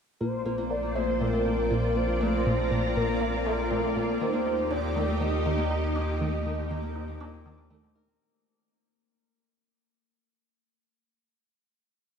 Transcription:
0.20 4.18 A#1 medium
0.20 0.38 A#2 medium
0.20 0.45 A#3 medium
0.20 8.22 C4 medium
0.20 4.17 F4 medium
0.20 2.18 C5 medium
0.20 0.67 C5 loud
0.20 4.17 D5 medium
0.20 8.22 D6 medium
0.45 0.57 A#2 medium
0.45 0.57 A#3 medium
0.58 0.82 A#3 medium
0.70 0.88 A#3 medium
0.70 0.97 D5 medium
0.83 1.26 A#3 medium
0.95 2.19 A#2 medium
0.95 1.07 A3 medium
0.95 1.22 C5 medium
1.20 1.28 A#2 loud
1.20 1.33 A3 medium
1.20 1.98 A#4 loud
1.33 1.51 A3 medium
1.45 1.63 A#2 medium
1.45 1.70 A#3 medium
1.70 1.82 A#2 medium
1.70 1.82 A#3 medium
1.83 2.08 A#3 medium
1.96 2.13 A#3 medium
1.96 2.21 C5 medium
2.08 2.51 A#3 medium
2.21 3.44 A#2 medium
2.21 2.33 A3 medium
2.21 2.98 C5 loud
2.21 4.19 A#5 medium
2.45 2.53 A#2 loud
2.45 2.58 A3 medium
2.58 2.77 A3 medium
2.71 2.88 A#2 medium
2.71 2.95 A#3 medium
2.95 3.08 A#2 medium
2.95 3.08 A#3 medium
2.95 3.46 A#4 loud
3.08 3.33 A#3 medium
3.21 3.38 A#3 medium
3.33 3.77 A#3 medium
3.46 4.26 A#2 medium
3.46 3.58 A3 medium
3.46 4.23 A#4 loud
3.71 3.78 A#2 loud
3.71 3.83 A3 medium
3.83 4.02 A3 medium
3.96 4.13 A#2 medium
3.96 4.20 A#3 medium
4.20 8.18 D#2 medium
4.20 4.32 D#3 medium
4.20 4.33 A#3 medium
4.20 8.17 D#4 medium
4.20 8.17 G4 medium
4.20 4.73 C5 loud
4.33 4.58 A#3 medium
4.46 4.63 D#4 medium
4.58 5.02 A#3 medium
4.70 5.94 A#2 medium
4.70 4.82 D4 medium
4.70 5.23 D5 loud
4.96 5.03 D#3 loud
4.96 5.07 A3 medium
5.08 5.26 A3 medium
5.20 5.38 D#3 medium
5.20 5.45 A#3 medium
5.20 7.71 D#5 loud
5.45 5.57 D#3 medium
5.45 5.57 A#3 medium
5.58 5.83 A#3 loud
5.71 5.88 D#4 medium
5.83 6.27 A#3 medium
5.95 7.19 A#2 medium
5.95 6.07 D4 medium
6.21 6.28 D#3 loud
6.21 6.33 A3 medium
6.33 6.52 A3 medium
6.46 6.63 D#3 medium
6.46 6.70 A#3 medium
6.70 6.82 D#3 medium
6.70 6.83 A#3 loud
6.83 7.08 A#3 medium
6.96 7.13 D#4 medium
7.08 7.57 A#3 medium
7.20 8.26 A#2 medium
7.20 7.32 D4 medium
7.45 7.53 D#3 loud
7.45 10.25 D4 medium
7.58 7.76 A#3 medium
7.70 7.88 D#3 medium
7.70 8.01 A3 medium
7.95 8.07 D#3 medium
7.95 10.07 A#4 loud
8.08 11.29 A#3 medium

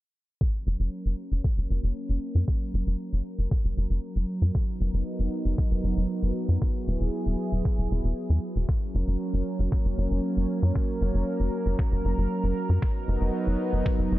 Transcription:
0.41 8.65 F#3 medium
0.41 4.51 A#3 medium
0.41 4.51 C#4 medium
0.41 6.58 A#4 medium
0.41 kick loud
0.67 0.76 F#1 medium
0.80 0.89 F#1 medium
1.06 1.15 F#1 medium
1.32 1.41 F#1 medium
1.44 kick loud
1.58 1.67 F#1 medium
1.70 1.80 F#1 medium
1.83 1.93 F#1 medium
2.09 2.19 F#1 medium
2.35 2.45 F#2 medium
2.48 kick loud
2.74 2.84 F#1 medium
2.87 2.96 F#1 medium
3.13 3.22 F#1 medium
3.38 3.48 F#1 medium
3.51 kick loud
3.64 3.74 F#1 medium
3.77 3.87 F#1 medium
3.90 4.00 F#1 medium
4.16 4.26 F#1 medium
4.42 4.51 F#2 medium
4.55 8.65 B3 medium
4.55 6.60 D#4 medium
4.55 kick loud
4.80 4.90 F#1 medium
4.94 5.03 F#1 medium
5.19 5.29 F#1 medium
5.45 5.55 F#1 medium
5.58 kick loud
5.71 5.81 F#1 medium
5.84 5.94 F#1 medium
5.97 6.07 F#1 medium
6.23 6.32 F#1 medium
6.49 6.58 F#2 medium
6.62 8.67 E4 medium
6.62 8.67 G#4 medium
6.62 kick loud
6.87 6.97 E1 medium
7.00 7.10 E1 medium
7.26 7.36 E1 medium
7.52 7.62 E1 medium
7.65 kick loud
7.78 7.88 E1 medium
7.91 8.01 E1 medium
8.04 8.14 E1 medium
8.30 8.39 E2 medium
8.56 8.65 E1 medium
8.68 12.78 F#3 medium
8.68 12.78 A#3 medium
8.68 12.78 C#4 medium
8.68 14.19 A#4 medium
8.68 kick loud
8.95 9.04 F#1 medium
9.08 9.17 F#1 medium
9.33 9.43 F#1 medium
9.59 9.69 F#1 medium
9.72 kick loud
9.85 9.95 F#1 medium
9.98 10.08 F#1 medium
10.11 10.21 F#1 medium
10.37 10.46 F#1 medium
10.63 10.72 F#2 medium
10.76 kick loud
11.01 11.11 F#1 medium
11.14 11.24 F#1 medium
11.40 11.50 F#1 medium
11.66 11.76 F#1 medium
11.79 kick loud
11.92 12.02 F#1 medium
12.05 12.14 F#1 medium
12.18 12.27 F#1 medium
12.44 12.53 F#1 medium
12.69 12.79 F#2 medium
12.82 14.19 F#3 medium
12.82 14.19 B3 medium
12.82 14.19 D#4 medium
12.82 kick loud
13.08 13.18 F#1 medium
13.21 13.31 F#1 medium
13.47 13.57 F#1 medium
13.73 13.83 F#1 medium
13.86 kick loud
13.99 14.08 F#1 medium
14.12 14.19 F#1 medium

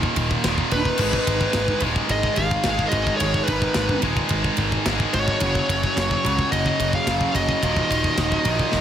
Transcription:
0.00 0.43 D#2 medium
0.00 0.44 A#2 medium
0.00 0.43 D#3 medium
0.00 kick medium
0.16 0.35 D#1 medium
0.16 kick medium
0.16 ride medium
0.31 kick medium
0.44 0.62 D#1 medium
0.44 0.99 D#2 medium
0.44 0.99 A#2 medium
0.44 kick medium
0.44 snare loud
0.44 ride loud
0.48 1.00 D#3 medium
0.58 kick medium
0.71 0.90 D#1 medium
0.71 1.79 B4 loud
0.71 kick medium
0.71 ride medium
0.76 1.81 D#4 medium
0.85 kick medium
0.98 1.17 G#1 medium
0.98 1.85 G#2 medium
0.98 1.82 D#3 medium
0.98 kick medium
0.98 crash loud
1.02 1.82 G#3 medium
1.13 kick medium
1.27 1.45 G#1 medium
1.27 kick medium
1.27 ride medium
1.41 kick medium
1.53 1.73 G#1 loud
1.53 kick medium
1.53 snare loud
1.53 ride loud
1.68 kick medium
1.80 2.00 D#1 medium
1.80 2.65 D#3 medium
1.80 2.64 G#3 medium
1.80 kick medium
1.80 ride medium
1.85 2.63 G#2 medium
1.96 kick medium
2.09 2.28 G#1 loud
2.09 2.37 G#4 medium
2.09 2.40 D#5 loud
2.09 kick medium
2.09 ride medium
2.23 kick medium
2.34 2.56 G#1 medium
2.34 2.93 F5 loud
2.34 kick medium
2.34 ride medium
2.38 2.90 G#4 loud
2.51 kick loud
2.64 2.83 G#1 medium
2.64 3.19 G#2 medium
2.64 3.20 D#3 medium
2.64 3.20 G#3 medium
2.64 kick medium
2.64 snare loud
2.64 ride loud
2.79 kick medium
2.89 3.11 G#1 medium
2.89 3.18 F#4 medium
2.89 3.16 D#5 loud
2.89 kick medium
2.89 ride medium
3.07 kick medium
3.17 3.39 G#1 medium
3.17 3.46 G#4 medium
3.17 3.48 C#5 medium
3.17 kick medium
3.17 ride loud
3.22 4.03 G#2 medium
3.22 4.03 D#3 loud
3.22 4.02 G#3 loud
3.34 kick medium
3.44 3.98 B4 medium
3.44 ride medium
3.48 3.66 G#1 medium
3.48 4.00 D#4 medium
3.48 kick medium
3.62 kick medium
3.74 3.94 G#1 loud
3.74 kick medium
3.74 snare loud
3.74 ride loud
3.89 kick medium
4.02 4.21 D#1 medium
4.02 4.86 D#3 medium
4.02 4.85 G#3 medium
4.02 kick medium
4.02 ride medium
4.07 4.86 G#2 medium
4.17 kick medium
4.29 4.49 G#1 loud
4.29 kick medium
4.29 ride loud
4.44 kick medium
4.57 4.76 G#1 medium
4.57 kick medium
4.57 ride medium
4.72 kick medium
4.86 5.04 G#1 medium
4.86 5.41 G#2 medium
4.86 5.42 D#3 medium
4.86 kick medium
4.86 snare loud
4.86 ride loud
4.91 5.43 G#3 medium
5.00 kick medium
5.13 5.32 G#1 loud
5.13 6.49 F#4 medium
5.13 6.49 C#5 medium
5.13 kick medium
5.13 ride medium
5.28 kick medium
5.40 5.59 F#1 loud
5.40 6.24 F#2 medium
5.40 6.24 C#3 loud
5.40 kick medium
5.40 ride loud
5.44 6.24 F#3 loud
5.55 kick medium
5.69 5.87 F#1 medium
5.69 kick medium
5.69 ride medium
5.83 kick medium
5.97 6.15 F#1 loud
5.97 kick medium
5.97 snare loud
5.97 ride loud
6.11 kick medium
6.25 6.43 C#2 medium
6.25 7.05 F#2 medium
6.25 7.06 C#3 medium
6.25 7.09 F#3 medium
6.25 kick medium
6.25 ride medium
6.39 kick medium
6.52 6.70 F#1 loud
6.52 6.93 F#4 medium
6.52 6.95 D#5 loud
6.52 kick medium
6.52 ride loud
6.66 kick medium
6.80 6.98 F#1 medium
6.80 kick medium
6.80 ride medium
6.93 7.34 G#4 medium
6.93 7.37 F5 loud
6.93 kick medium
7.06 7.25 F#1 medium
7.06 7.61 F#2 medium
7.06 7.62 C#3 medium
7.06 7.64 F#3 medium
7.06 kick medium
7.06 snare loud
7.06 ride loud
7.21 kick medium
7.35 7.53 F#1 medium
7.35 8.81 F#4 medium
7.35 8.81 D#5 medium
7.35 kick medium
7.35 ride medium
7.49 kick medium
7.62 7.81 D#1 loud
7.62 8.45 D#2 medium
7.62 8.45 A#2 loud
7.62 8.44 D#3 medium
7.62 kick medium
7.62 ride loud
7.76 kick medium
7.91 8.09 D#1 medium
7.91 kick medium
7.91 ride medium
8.04 kick medium
8.17 8.36 D#1 loud
8.17 kick medium
8.17 snare loud
8.17 ride loud
8.32 kick medium
8.45 8.64 A#1 medium
8.45 8.81 D#2 medium
8.45 8.81 A#2 medium
8.45 8.81 D#3 medium
8.45 kick medium
8.45 ride medium
8.59 kick medium
8.72 8.81 D#1 medium
8.72 kick medium
8.72 snare medium

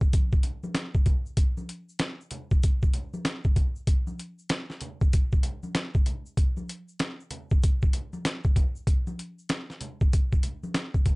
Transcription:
0.01 kick medium
0.01 shaker soft
0.13 kick medium
0.13 closed hi-hat medium
0.13 high conga soft
0.13 shaker medium
0.32 kick medium
0.32 shaker soft
0.43 closed hi-hat medium
0.43 low conga medium
0.43 shaker soft
0.63 high conga medium
0.63 shaker soft
0.75 snare loud
0.75 closed hi-hat medium
0.75 shaker medium
0.94 kick medium
0.94 shaker soft
1.06 kick medium
1.06 closed hi-hat medium
1.06 low conga medium
1.06 shaker soft
1.26 shaker soft
1.37 kick loud
1.37 closed hi-hat medium
1.37 shaker soft
1.57 high conga medium
1.57 shaker soft
1.69 closed hi-hat medium
1.69 shaker soft
1.89 shaker soft
1.99 snare loud
1.99 closed hi-hat medium
1.99 shaker medium
2.21 shaker soft
2.31 closed hi-hat medium
2.31 low conga medium
2.31 shaker soft
2.51 kick medium
2.51 shaker soft
2.63 kick medium
2.63 closed hi-hat loud
2.63 shaker medium
2.82 kick medium
2.82 shaker soft
2.94 closed hi-hat medium
2.94 low conga medium
2.94 shaker soft
3.14 high conga medium
3.14 shaker soft
3.25 snare loud
3.25 closed hi-hat medium
3.25 shaker medium
3.44 kick medium
3.44 shaker soft
3.56 kick medium
3.56 closed hi-hat medium
3.56 low conga medium
3.56 shaker soft
3.76 shaker soft
3.87 kick loud
3.87 closed hi-hat medium
3.87 shaker soft
4.07 high conga medium
4.07 shaker soft
4.19 closed hi-hat medium
4.19 shaker soft
4.39 shaker soft
4.49 snare loud
4.49 closed hi-hat medium
4.49 shaker medium
4.70 snare soft
4.70 shaker soft
4.81 closed hi-hat medium
4.81 low conga medium
4.81 shaker soft
5.01 kick medium
5.01 shaker soft
5.13 kick medium
5.13 closed hi-hat medium
5.13 shaker medium
5.32 kick medium
5.32 shaker soft
5.43 closed hi-hat medium
5.43 low conga medium
5.43 shaker soft
5.63 high conga medium
5.63 shaker soft
5.75 snare loud
5.75 closed hi-hat medium
5.75 shaker medium
5.94 kick loud
5.94 shaker soft
6.06 closed hi-hat medium
6.06 low conga medium
6.06 shaker soft
6.26 shaker soft
6.37 kick loud
6.37 closed hi-hat medium
6.37 shaker medium
6.57 high conga medium
6.57 shaker soft
6.69 closed hi-hat medium
6.69 shaker soft
6.88 shaker soft
6.99 snare loud
6.99 closed hi-hat medium
6.99 shaker medium
7.20 shaker soft
7.31 closed hi-hat medium
7.31 low conga medium
7.31 shaker soft
7.50 kick medium
7.50 shaker soft
7.63 kick medium
7.63 closed hi-hat medium
7.63 shaker medium
7.82 kick medium
7.82 shaker soft
7.93 closed hi-hat medium
7.93 low conga medium
7.93 shaker soft
8.13 high conga medium
8.13 shaker soft
8.25 snare loud
8.25 closed hi-hat medium
8.25 shaker medium
8.44 kick medium
8.44 shaker soft
8.56 kick medium
8.56 closed hi-hat medium
8.56 low conga medium
8.56 shaker soft
8.76 shaker soft
8.87 kick loud
8.87 closed hi-hat medium
8.87 shaker medium
9.07 high conga medium
9.07 shaker soft
9.19 closed hi-hat medium
9.19 shaker soft
9.39 shaker soft
9.49 snare loud
9.49 closed hi-hat medium
9.49 shaker medium
9.70 snare soft
9.70 shaker soft
9.81 closed hi-hat medium
9.81 low conga medium
9.81 shaker soft
10.01 kick loud
10.01 shaker soft
10.13 kick medium
10.13 closed hi-hat medium
10.13 shaker medium
10.32 kick medium
10.32 shaker soft
10.43 closed hi-hat medium
10.43 low conga medium
10.43 shaker soft
10.63 high conga medium
10.63 shaker soft
10.74 snare loud
10.74 closed hi-hat medium
10.74 shaker medium
10.94 kick medium
10.94 shaker soft
11.06 kick medium
11.06 closed hi-hat medium
11.06 low conga medium
11.06 shaker soft

